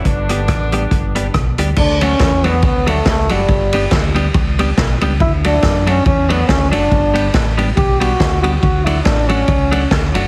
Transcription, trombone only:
X:1
M:4/4
L:1/8
Q:"Swing" 1/4=140
K:D
V:1 name="Trombone"
z8 | D C2 B, B, A, A, G,- | G,2 z6 | E D2 C C B, C D- |
D2 z2 G F2 F | F E D C3 z2 |]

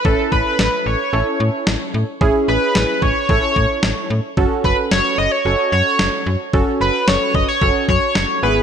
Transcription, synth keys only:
X:1
M:4/4
L:1/8
Q:1/4=111
K:F#dor
V:1 name="Synth keys"
[CEA]3 z [CEA]3 z | [CEG]3 z [CEA]3 z | [CFA]3 z [CFA]3 z | [CFA]3 z [CFA]3 [B,EG] |]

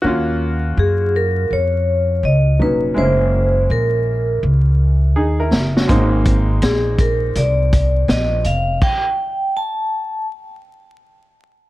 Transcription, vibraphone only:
X:1
M:4/4
L:1/8
Q:"Swing 16ths" 1/4=82
K:Ebm
V:1 name="Vibraphone"
z2 A B d2 e c | =c2 B2 z4 | z2 A B =d2 e f | =g2 =a2 z4 |]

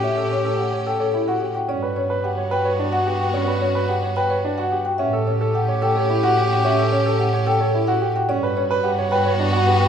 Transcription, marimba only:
X:1
M:3/4
L:1/16
Q:1/4=109
K:Amix
V:1 name="Marimba"
e z c z f z g A z f z g | d z c z f z g B z f z g | d z c z f z g B z f z g | e z c z f z g A z f z g |
e z c z f z g A z f z g | d z c z f z g B z f z g |]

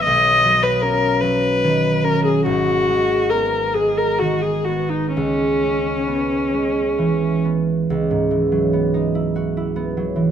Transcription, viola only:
X:1
M:6/8
L:1/16
Q:3/8=47
K:C#dor
V:1 name="Viola"
d3 B A2 B4 A G | F4 A2 G A F G F D | C8- C2 z2 | z12 |]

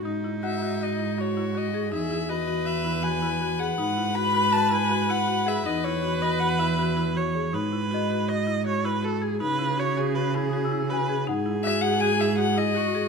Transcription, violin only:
X:1
M:5/4
L:1/8
Q:1/4=161
K:G#phr
V:1 name="Violin"
z2 e2 d2 c2 d2 | e2 d2 e2 g3 f- | f2 b2 a g2 f2 e | d c2 d f e2 z3 |
z8 z2 | z8 z2 | z2 e f g e f d3 |]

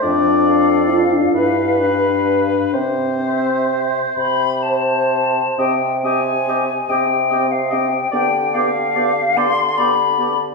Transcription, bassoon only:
X:1
M:6/8
L:1/8
Q:3/8=46
K:C
V:1 name="Bassoon" clef=bass
F,,3 G,,3 | C,3 C,3 | [K:Cm] C,3 C,3 | D,3 D,3 |]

